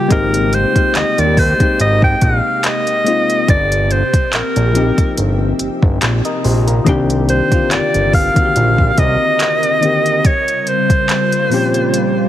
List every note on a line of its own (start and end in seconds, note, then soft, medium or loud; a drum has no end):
0.00 0.12 C#4 medium
0.08 0.65 G#1 loud
0.08 3.45 C3 medium
0.08 0.58 G#3 loud
0.08 0.59 A#3 medium
0.08 3.45 A#3 medium
0.08 0.60 C4 medium
0.08 0.60 D#4 medium
0.08 6.83 G4 medium
0.08 0.55 A#4 medium
0.08 kick loud
0.08 closed hi-hat medium
0.13 0.61 G4 loud
0.34 closed hi-hat medium
0.53 0.98 C5 loud
0.53 closed hi-hat medium
0.74 1.38 G#3 medium
0.74 1.38 A#3 medium
0.74 1.39 C4 medium
0.74 1.39 D#4 medium
0.74 kick medium
0.74 closed hi-hat soft
0.78 1.40 G4 medium
0.95 1.05 D#2 medium
0.95 1.21 D#5 medium
0.95 clap loud
0.95 closed hi-hat medium
1.18 1.54 D#2 medium
1.18 1.40 D5 medium
1.18 closed hi-hat medium
1.37 1.80 C5 loud
1.37 kick medium
1.37 open hi-hat medium
1.58 2.71 G#3 medium
1.58 2.72 A#3 medium
1.58 2.72 C4 medium
1.58 2.73 D#4 medium
1.58 kick loud
1.58 closed hi-hat soft
1.63 2.73 G4 medium
1.80 2.15 G#1 loud
1.80 2.01 D#5 loud
1.80 closed hi-hat medium
2.02 2.24 G5 loud
2.02 kick medium
2.21 2.41 A#1 loud
2.21 2.67 F5 loud
2.21 kick medium
2.21 closed hi-hat medium
2.64 3.49 D#5 loud
2.64 clap loud
2.64 closed hi-hat medium
2.87 closed hi-hat soft
3.04 3.48 G#3 medium
3.04 3.48 A#3 medium
3.04 3.49 C4 medium
3.04 3.49 D#4 medium
3.04 closed hi-hat medium
3.09 3.50 F4 medium
3.30 closed hi-hat medium
3.48 4.03 G1 loud
3.48 10.21 C3 medium
3.48 6.83 C4 medium
3.48 3.93 D5 loud
3.48 kick loud
3.48 closed hi-hat medium
3.72 closed hi-hat medium
3.91 4.34 C5 medium
3.91 closed hi-hat medium
4.13 kick medium
4.13 closed hi-hat medium
4.33 4.43 A#1 soft
4.33 5.14 A#4 medium
4.33 clap loud
4.33 closed hi-hat medium
4.56 4.92 A#1 medium
4.56 closed hi-hat medium
4.73 6.04 F3 medium
4.73 6.04 A#3 medium
4.73 6.05 C4 medium
4.73 6.06 D#4 medium
4.73 closed hi-hat medium
4.78 6.03 G4 medium
4.98 kick medium
4.98 closed hi-hat soft
5.17 5.53 G1 loud
5.17 closed hi-hat medium
5.59 5.69 G1 soft
5.59 closed hi-hat medium
5.83 5.99 G1 loud
5.83 kick loud
6.02 6.21 A#1 medium
6.02 clap loud
6.02 closed hi-hat medium
6.25 6.44 A#4 medium
6.25 6.43 D#5 medium
6.25 closed hi-hat soft
6.44 6.80 A#1 loud
6.44 6.66 G4 medium
6.44 6.66 C5 medium
6.44 open hi-hat medium
6.67 7.08 F4 medium
6.67 7.07 A#4 medium
6.67 closed hi-hat soft
6.84 7.41 C2 loud
6.84 7.35 D#3 loud
6.84 7.35 A#3 loud
6.84 10.21 C4 medium
6.84 7.36 C4 loud
6.84 7.36 D4 loud
6.84 10.21 A#4 medium
6.84 kick loud
6.84 closed hi-hat medium
6.89 7.37 G4 loud
7.10 closed hi-hat medium
7.29 7.73 C5 loud
7.29 closed hi-hat medium
7.50 7.57 D3 medium
7.50 8.14 A#3 medium
7.50 8.15 C4 medium
7.50 8.15 D4 medium
7.50 kick medium
7.50 closed hi-hat medium
7.54 8.17 D#3 medium
7.54 8.16 F4 medium
7.71 7.81 G1 soft
7.71 8.14 D5 loud
7.71 clap loud
7.71 closed hi-hat medium
7.94 8.30 G1 medium
7.94 closed hi-hat medium
8.13 9.00 F5 loud
8.13 kick medium
8.13 open hi-hat medium
8.34 9.49 D3 medium
8.34 9.47 D#3 medium
8.34 9.48 A#3 medium
8.34 9.48 C4 medium
8.34 kick loud
8.34 closed hi-hat soft
8.39 8.43 F#4 medium
8.45 9.53 G4 medium
8.56 8.91 A#1 loud
8.56 closed hi-hat medium
8.78 kick medium
8.98 9.17 C2 medium
8.98 10.27 D#5 loud
8.98 kick medium
8.98 closed hi-hat medium
9.40 clap loud
9.40 closed hi-hat medium
9.63 closed hi-hat soft
9.80 10.25 D3 medium
9.80 10.24 D#3 medium
9.80 10.24 A#3 medium
9.80 10.25 C4 medium
9.80 closed hi-hat medium
9.85 10.26 G4 medium
10.06 closed hi-hat soft
10.25 12.29 C#3 medium
10.25 12.29 G3 medium
10.25 12.29 A#3 medium
10.25 12.29 F4 medium
10.25 10.62 C#5 loud
10.25 kick loud
10.25 closed hi-hat medium
10.48 closed hi-hat medium
10.62 10.70 C#5 medium
10.67 12.29 C5 medium
10.67 closed hi-hat medium
10.90 kick medium
10.90 closed hi-hat medium
11.09 clap loud
11.09 closed hi-hat medium
11.32 closed hi-hat medium
11.49 12.29 A#2 medium
11.49 12.29 F3 medium
11.49 12.29 A#3 medium
11.49 12.29 C4 medium
11.49 12.29 C#4 medium
11.49 open hi-hat medium
11.54 12.29 G4 medium
11.74 closed hi-hat medium
11.94 closed hi-hat medium